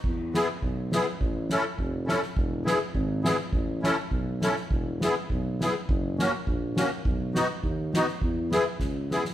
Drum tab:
CC |x-------|--------|--------|--------|
SD |--o---o-|--o---oo|--o---o-|--o---oo|
BD |o---o---|o---o---|o---o---|o---o---|

CC |--------|--------|--------|--------|
SD |--o---o-|--o---o-|--o---oo|--o-o-oo|
BD |o---o---|o---o---|o---o---|o---o---|